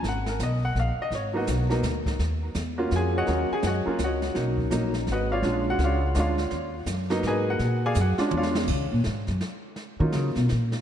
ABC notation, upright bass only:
X:1
M:3/4
L:1/8
Q:"Swing" 1/4=166
K:Ebm
V:1 name="Upright bass" clef=bass
A,,,2 C,,2 B,,, z | A,,,2 C,,2 =D,,2 | E,,2 _F,,2 =F,,2 | E,, z G,, z D,,2 |
=B,,,2 ^A,,,2 _A,,,2 | B,,,2 ^C,,2 =D,,2 | E,,2 G,,2 A,,2 | B,,2 G,, z _F,,2 |
D, B,, A,, G,, z2 | z E, D, C, B,, z |]